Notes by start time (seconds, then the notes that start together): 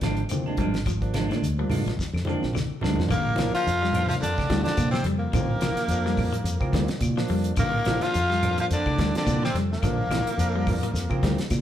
0.01 G#1 D3 F3 G#3 D4, kick, snare, closed hi-hat, high conga, shekere
0.17 closed hi-hat
0.29 D3 F3 A#3 C4, closed hi-hat, high conga, claves, shekere
0.46 G#3 D4, high conga
0.57 G#1 F3 G3 G#3 D4, kick, closed hi-hat, low conga, shekere
0.74 snare, closed hi-hat
0.86 F3, kick, snare, closed hi-hat, high conga, claves, shekere
1.01 F3 A#3 D4, kick, closed hi-hat
1.13 F3 G#3 D4, snare, closed hi-hat, high conga, claves, shekere
1.29 A#2 D3 G#3 D4, snare, closed hi-hat
1.42 D2, closed hi-hat, high conga, shekere
1.58 F3 G3 A#3 D4
1.69 G2 F3 G#3, muted clean electric guitar stroke, open hi-hat, high conga, low conga, claves, shekere
1.86 A#1 F3, snare, closed hi-hat
1.97 muted fingered electric bass stroke, kick, snare, high conga, shekere
2.13 F2, snare, claves
2.25 D3 F3 G#3 A#3 C4 D4, high conga, shekere
2.43 A#1, snare
2.53 D3, snare, high conga, claves, shekere
2.72 muted fingered electric bass stroke
2.81 D2 F3 G3 G#3 A#3 D4, snare, low conga, shekere
2.96 F2, snare, low conga
3.09 A#1 A#2 D3 A#3, kick, closed hi-hat, high conga, low conga, claves, shekere
3.13 A#4
3.36 A#1 F3 A#3 D4, snare, closed hi-hat, high conga, claves, shekere
3.54 F3 F4 F5, muted fingered electric bass stroke, closed hi-hat
3.65 F2, closed hi-hat, high conga, shekere
3.82 G3, snare
3.93 F3 A#3 D4, closed hi-hat, low conga, claves, shekere
4.08 F3 F4 F5, closed hi-hat, high conga
4.12 snare
4.20 F2 D3 D4 D5, closed hi-hat, high conga, shekere
4.38 kick, snare, high conga, claves
4.50 D2 G3, kick, snare, closed hi-hat, high conga, shekere
4.63 D3 F3 A#3 D4 F4 D5, snare, closed hi-hat
4.68 muted fingered electric bass stroke
4.77 A#2, kick, snare, closed hi-hat, high conga, claves, shekere
4.91 C3 F3 C4 C5, snare, high conga
5.04 F2 G3, closed hi-hat
5.08 shekere
5.18 A#2 A#3 A#4
5.33 A#1 D3 F3 A#3 C4, kick, closed hi-hat, high conga, low conga, claves, shekere
5.61 A#1 F3, snare, closed hi-hat, high conga, claves, shekere
5.76 muted fingered electric bass stroke, snare, closed hi-hat
5.88 F2 F3 A#3 D4, closed hi-hat, high conga, shekere
6.06 G3, snare
6.17 kick, open hi-hat, low conga, claves, shekere
6.33 F3, closed hi-hat
6.44 F2, closed hi-hat, high conga, shekere
6.60 F3 A#3 C4, kick, high conga, claves
6.73 D2 G3, kick, snare, closed hi-hat, high conga, shekere
6.88 muted fingered electric bass stroke, snare, closed hi-hat
7.01 A#2, kick, closed hi-hat, high conga, claves, shekere
7.17 F3 A#3 D4, snare
7.28 F2 G3, open hi-hat, shekere
7.44 closed hi-hat
7.56 A#1 A#2 D3 A#3 A#4, kick, closed hi-hat, high conga, low conga, claves, shekere
7.85 A#1 F3 A#3 D4, snare, closed hi-hat, high conga, claves, shekere
8.01 F3 F4 F5, muted fingered electric bass stroke, snare, closed hi-hat
8.14 F2, closed hi-hat, high conga, shekere
8.30 G3, snare
8.42 F3 A#3 D4, closed hi-hat, low conga, claves, shekere
8.58 F3 F4 F5, closed hi-hat
8.70 F2 D3 D4 D5, closed hi-hat, high conga, shekere
8.86 kick, high conga, claves
8.98 D2 G3, kick, snare, closed hi-hat, high conga, shekere
9.13 D3 F3 A#3 C4 D4 D5, muted fingered electric bass stroke, snare, closed hi-hat
9.26 A#2, kick, snare, closed hi-hat, high conga, claves, shekere
9.43 C3 F3 C4 C5, snare
9.54 F2 G3, snare, closed hi-hat, shekere
9.72 A#2 A#3 A#4, snare
9.82 A#1 D3 F3 A#3 D4, kick, snare, closed hi-hat, high conga, low conga, claves, shekere
10.09 A#1 F3, snare, closed hi-hat, high conga, claves, shekere
10.26 muted fingered electric bass stroke, closed hi-hat
10.38 F2 F3 A#3 D4, closed hi-hat, high conga, shekere
10.56 G3
10.67 kick, open hi-hat, low conga, claves, shekere
10.83 F3, closed hi-hat
10.94 F2, snare, closed hi-hat, high conga, shekere
11.09 F3 A#3 C4, kick, high conga, claves
11.23 D2 G3, kick, snare, closed hi-hat, high conga, shekere
11.38 muted fingered electric bass stroke, snare, closed hi-hat
11.50 A#2, kick, snare, closed hi-hat, high conga, claves, shekere